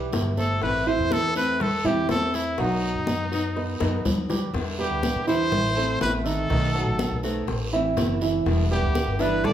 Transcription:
Already playing: B1 E3 G3 B3 E4 G4 B4
0.13 G1 E3 G3 B3 E4, high bongo, low bongo, high conga, short guiro
0.37 A3 A4 C5, high bongo, high conga, short guiro
0.61 A1 E3 A3 C4 E4 B4, high bongo, high conga, long guiro
0.86 E3 E4 C5 E5, high conga
0.99 E2
1.11 A4, high bongo, high conga, short guiro
1.35 A3 C4 E4 A4 B4 C5, short guiro
1.60 A4, muted nylon-string guitar stroke, high bongo, high conga, low conga, long guiro
1.84 E2 E3 A3 C4 E4 G4 E5, high conga, low conga
2.09 E2 E3 A3 C4 E4 A4 C5, high bongo, low bongo, high conga, short guiro
2.34 E4, high conga, short guiro
2.58 B1 B2 F#3 B3 D#4 F#4 F#5, high bongo, high conga, long guiro
2.83 high bongo, high conga
2.95 F#2
3.07 B3 B4 D#5, high bongo, high conga, short guiro
3.31 F#3 B3 D#4 F#4, high bongo, short guiro
3.56 B3 B4 D#5, muted nylon-string guitar stroke, high bongo, high conga, long guiro
3.80 F#2 F#3 B3 D#4 F#4 B4 D#5, high bongo, high conga
4.05 D#2 F#3 B3 D#4 F#4, low bongo, low conga, short guiro
4.29 G3 G4 B4, low bongo, low conga, short guiro
4.54 E2 B2 D3 G3 B3 E4, high bongo, high conga, long guiro
4.79 G3 B3 G4 B4, high conga
4.90 D2
5.03 G3 G4 B4, high bongo, high conga, short guiro
5.15 E2
5.27 D3 E3 G3 B3 E4 C5 E5, high conga, short guiro
5.52 A1, muted nylon-string guitar stroke, high bongo, high conga, low conga, long guiro
5.76 A3 C4 E4 A4 C5, high conga
6.01 A1 E3 A3 C4 E4 B4, high bongo, low bongo, high conga, short guiro
6.25 D#3 D#4 A4 D#5, short guiro
6.50 B1 B2 D#3 A3 B3 D#4 F#4 D#5, high bongo, high conga, long guiro
6.74 F#3 F#4 A4, high conga
6.86 A1
6.99 high bongo, high conga, short guiro
7.11 B1
7.23 D#3 A3 B3 F#4 A4 C5, high bongo, high conga, short guiro
7.47 A1, muted nylon-string guitar stroke, high bongo, high conga, long guiro
7.73 E3 A3 C4 E4 E5, high bongo, high conga
7.97 F#1 E3 A3 C4 E4, high bongo, low bongo, high conga, short guiro
8.21 E3 E4 E5, high bongo, short guiro
8.46 E1 B2 D3 G3 B3 E4, high bongo, high conga, long guiro
8.71 G3 B3 G4 B4, high conga
8.83 D2
8.95 G3 G4 B4, high bongo, high conga, short guiro
9.07 G1
9.19 D3 E3 G3 B3 D4 E4 B4 E5, high conga, short guiro
9.44 A1 A4 D5, muted nylon-string guitar stroke, high bongo, high conga, low conga, long guiro

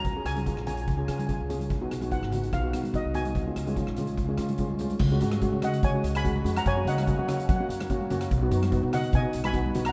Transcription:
Already playing: A#5
0.04 C#2, kick, closed hi-hat
0.16 C#4 F4 G#4
0.25 C#2 G#5, cross-stick, closed hi-hat
0.36 C#4 F4 G#4, closed hi-hat, high conga
0.46 C#4 F4 G#4, kick, closed hi-hat
0.57 A#1, cross-stick
0.66 C#4 F4 G#4 G#5, closed hi-hat, low conga
0.74 G#5, closed hi-hat
0.82 G#5
0.88 C#2 G#5, kick, closed hi-hat
0.97 C#4 F4 G#4 G#5
1.04 C#3 C#4 F4 G#5, cross-stick, closed hi-hat
1.08 G#4 G#5
1.19 G#5, closed hi-hat, high conga
1.27 C#4 F4 G#4 G#5, kick, closed hi-hat
1.34 G#5
1.40 C#2
1.49 C#4 F4 G#4, closed hi-hat, low conga
1.60 closed hi-hat, high conga
1.70 B1, kick, closed hi-hat
1.81 B3 D#4 F#4
1.91 B1, cross-stick, closed hi-hat
2.01 B3 D#4 F#4, closed hi-hat, high conga
2.11 B3 D#4 F4 F#5, kick, closed hi-hat
2.22 G#1, cross-stick
2.32 B3 D#4 F#4, closed hi-hat, low conga
2.43 closed hi-hat
2.53 B1 F5, kick, cross-stick, closed hi-hat
2.63 B3 D#4 F#4
2.73 B2 B3 D#4 F#4, cross-stick, closed hi-hat
2.84 closed hi-hat, high conga
2.94 B3 D#4 F#4 D#5, kick, closed hi-hat
3.05 C2
3.14 B3 D#4 F#4 G#5, closed hi-hat, low conga
3.25 closed hi-hat, high conga
3.35 C#2, kick, closed hi-hat
3.46 G#3 C#4 F4
3.56 C#2, cross-stick, closed hi-hat
3.67 G#3 C#4 F4, closed hi-hat, high conga
3.76 G#3 C#4 F4, kick, closed hi-hat
3.87 A#1, cross-stick
3.96 G#3 C#4 F4, closed hi-hat, high conga, low conga
4.07 closed hi-hat
4.17 C#2, kick, closed hi-hat
4.28 G#3 C#4 F4
4.38 C#3 G#3 C#4 F4, cross-stick, closed hi-hat
4.49 closed hi-hat, high conga
4.58 G#3 C#4 F4, kick, closed hi-hat
4.70 C#2, high conga
4.79 G#3 C#4 F4, closed hi-hat, low conga
4.90 closed hi-hat, high conga
4.99 C#2, kick, crash
5.12 G#3 C#4 F#4
5.21 G#1 G#3 C#4 F#4, closed hi-hat
5.32 cross-stick, closed hi-hat, high conga
5.41 G#3 C#4 F#4, kick, closed hi-hat
5.52 C#3 G#3 C#4 F#4
5.62 G#3 C#4 F#4 D#5 F#5, cross-stick, closed hi-hat, low conga
5.74 closed hi-hat
5.83 C#3 C#5 G#5, kick, closed hi-hat
5.94 G#3 C#4 F#4
6.03 C#2, closed hi-hat
6.15 G#5 B5, cross-stick, closed hi-hat
6.24 G#3 C#4 F#4, kick, closed hi-hat
6.36 high conga
6.44 F2 G#3 C#4 F#4, closed hi-hat
6.57 F#5 A#5, cross-stick, closed hi-hat
6.66 F#2 C#5 G#5, kick, closed hi-hat
6.76 A#3 C#4 F#4
6.85 C#2 A#3 C#4 F#4 D#5 F#5, closed hi-hat
6.95 F#5, cross-stick, closed hi-hat, high conga
7.03 A#3 F#5
7.07 C#4 F#4 F#5, kick, closed hi-hat
7.17 F#3 A#3 C#4 F#4 F#5
7.27 A#3 C#4 F#4 F#5, cross-stick, closed hi-hat, low conga
7.34 F#5
7.40 F#5, closed hi-hat
7.49 F#3 F#5, kick, closed hi-hat
7.56 A#3 C#4 F#5
7.61 F#4
7.69 F#2, closed hi-hat
7.80 cross-stick, closed hi-hat, high conga
7.90 A#3 C#4 F#4, kick, closed hi-hat
8.01 high conga
8.10 F#2 A#3 C#4 F#4, closed hi-hat, low conga
8.21 cross-stick, closed hi-hat
8.31 B1, kick, closed hi-hat
8.42 B3 D#4 F#4
8.51 F#2 B3 D#4 F#4, closed hi-hat
8.63 cross-stick, closed hi-hat, high conga
8.71 B3 D#4 F#4, kick, closed hi-hat
8.82 B2 B3 D#4 F#4
8.91 B3 D#4 F#4 D#5 F#5, cross-stick, closed hi-hat, low conga
9.03 closed hi-hat
9.13 B2 D#5 G#5, kick, closed hi-hat
9.22 B3 D#4 F#4
9.33 B1, closed hi-hat
9.44 G#5 B5, cross-stick, closed hi-hat, high conga
9.53 B3 D#4 F#4, kick, closed hi-hat
9.66 high conga
9.75 B1 B3 D#4 F#4, closed hi-hat, low conga
9.85 F#5 A#5, cross-stick, closed hi-hat

